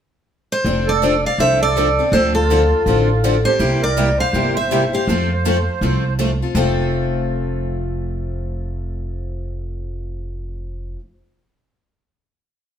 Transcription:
0.52 C5
0.65 F1 F3 C4 D4 A4
0.87 A4 D5
1.02 F3 C4 D4 A4
1.24 D5 F5
1.38 C2 F3 C4 D4 A4 C5 E5
1.61 A4 D5
1.76 F3 C4 D4 A4
1.99 C4 D4 A4
2.12 D2 D3 F3 C4 D4 A4 C5
2.34 F4 A4
2.51 D3 F3 C4 D4 A4
2.86 A1 D3 F3 C4 D4 A4
3.24 D3 F3 C4 D4 A4
3.45 C4 D4 G4 A4 C5
3.59 C2 C3 G3 A#3 E4 G4
3.82 A#4 D5
3.97 C3 G3 A#3 E4 G4
4.17 C5 F5
4.33 G1 C3 G3 A#3 E4 G4
4.54 C5 E5
4.71 C3 G3 A#3 E4 G4
4.92 A#3 E4 G4 C5 F5
5.07 F2 F3 A3 C4 F4 A4
5.46 F3 A3 C4 F4 A4
5.81 C2 F3 A3 C4 F4 A4
6.19 F3 A3 C4 F4 A4
6.42 C4 F4 A4
6.55 F1 F3 A3 C4 F4 A4

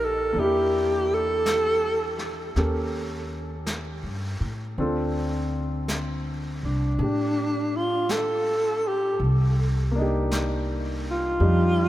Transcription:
Already playing: A#1 A#3 C4 F4 G4 D5
0.05 A4
0.33 E2 A#3 D4, brush sweep
0.40 E4 G4
0.44 G4
1.14 A4
1.46 brush sweep, snare, hi-hat pedal
2.18 snare
2.56 D#2 C#4 G4 A4 A#4, brush sweep, snare
3.66 brush sweep, snare, hi-hat pedal
4.03 G2
4.40 A2
4.77 D2 C4 D4 F4 A4, brush sweep
5.88 brush sweep, snare, hi-hat pedal
6.63 C2 D4
6.99 A2 D4 G4, brush sweep
7.77 F4
8.09 A4, brush sweep, snare, hi-hat pedal
8.88 G4
9.20 C2, brush sweep
9.91 A#3 D4
9.98 D#4 G4
10.31 brush sweep, snare, hi-hat pedal
11.11 F4
11.40 F2 G3 D4 D#4 G4, brush sweep

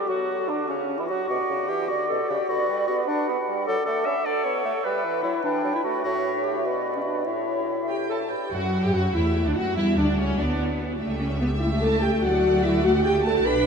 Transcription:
Already playing: G4
0.07 F#3 F#4
0.48 D3 D4
0.67 C#3 C#4
0.97 E3 E4
1.08 F#3 F#4
1.28 B2 F#4 D5 F#5
1.50 C#3
1.68 E3 G4
1.88 D3 F#4 D5
2.09 B2 A4
2.29 C#3 G4
2.49 D3 F#4 B4
2.69 G3
2.88 B3 F#4
3.07 D4 B4 F#5
3.29 B3
3.48 G3
3.66 F#3 A4 D5 F#5
3.86 A3 A4
4.06 C#4 E5
4.25 D4 A4 D5 F#5
4.44 B3 C#5
4.65 A3
4.84 G3 B4 E5
5.04 E3
5.23 F#3 E4
5.44 E3 D4 B4 G5
5.65 F#3
5.75 E4
5.84 A3 F#4
6.04 A2 F#4 C#5 E5
6.44 G4
6.65 B2 F#4 B4 D5
6.96 C#4
7.06 D4
7.26 A2 E4 C#5 E5
7.89 G4 C#5 G5
8.10 A4 A5
8.30 G4 B4 G5
8.51 F#2 F#3 F#4 F#5
8.83 G2 G4 G5
8.93 F#2 F#4 F#5
9.14 E2 A3 E4 E5
9.46 D2 D4 D5
9.56 F#2 F#4 F#5
9.76 E2 G3 E4 E5
9.97 D2 D4 D5
10.18 C#2 C#4 C#5
10.38 D2 B3 D4 D5
10.99 C#2 A3 G4 E5
11.19 C#4
11.40 B3
11.60 A3 E4 E5
11.81 A4 A5
12.02 G4 G5
12.22 D2 F#3 F#4 D5 F#5
12.63 E4 E5
12.84 A3 F#4 F#5
13.03 G4 G5
13.24 A4 A5
13.44 B1 D4 B4 B5

